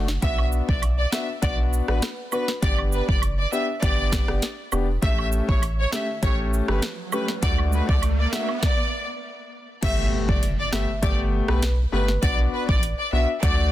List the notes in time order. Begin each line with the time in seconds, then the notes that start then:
Already playing: F#1
0.08 snare
0.22 B1 B3 D4 F#4 E5, kick, closed hi-hat
0.38 high woodblock
0.52 cabasa
0.68 B1 D5, kick
0.82 closed hi-hat, high woodblock
0.98 D5
1.12 B3 D4 F#4 E5, cross-stick, snare, cabasa
1.42 B1 B3 D4 F#4 D5, kick, closed hi-hat
1.73 cabasa
1.88 A1 B3 D4 F#4 B4, cross-stick
2.02 cross-stick, snare, closed hi-hat
2.32 B3 D4 F#4 B4, cabasa, high woodblock
2.48 snare
2.62 G1 B3 D4 G4 D5, kick, closed hi-hat
2.78 high woodblock
2.92 B4, cabasa
3.08 F#1 D5, kick
3.22 closed hi-hat, high woodblock
3.38 D5
3.52 B3 D4 G4 E5, cabasa
3.82 G1 B3 D4 G4 D5, kick, closed hi-hat
4.12 kick, cross-stick, snare, cabasa
4.28 F#1 B3 D4 G4, cross-stick
4.42 snare, closed hi-hat
4.72 E1 B3 D4 G4, cabasa, high woodblock
5.02 A1 A3 C#4 G4 E5, kick, closed hi-hat, riser
5.18 high woodblock
5.32 cabasa
5.49 A1 C#5, kick
5.62 closed hi-hat, high woodblock
5.79 C#5
5.92 A3 C#4 G4 E5, cross-stick, snare, cabasa
6.22 A1 A3 C#4 G4 C#5, kick, closed hi-hat
6.53 cabasa
6.68 G1 A3 C#4 G4 B4, cross-stick
6.82 cross-stick, snare, closed hi-hat
7.12 A3 C#4 G4 B4, cabasa, high woodblock
7.28 snare
7.43 D2 A3 D4 F#4 D5, kick, closed hi-hat
7.58 high woodblock
7.73 B4, cabasa
7.89 C#2 D5, kick
8.02 closed hi-hat, high woodblock
8.19 D5
8.32 A3 D4 F#4 E5, cross-stick, snare, cabasa
8.48 high woodblock
8.63 D5, kick, snare
9.82 G1 A3 B3 G4 E5, kick, closed hi-hat, crash, impact
10.29 F#1 D5, kick
10.43 closed hi-hat
10.59 D5
10.72 G1 A3 B3 G4 E5, cross-stick, snare
11.02 G1 A3 B3 G4 D5, kick, closed hi-hat
11.48 B1 A3 B3 G4 B4, cross-stick
11.62 cross-stick, snare, closed hi-hat
11.92 G1 A3 B3 G4 B4
12.08 snare
12.22 B1 B3 D4 F#4 D5, kick, closed hi-hat
12.53 B4
12.69 A1 D5, kick
12.83 closed hi-hat
12.99 D5
13.13 B1 B3 D4 F#4 E5
13.43 D2 A3 D4 F#4 D5, kick, closed hi-hat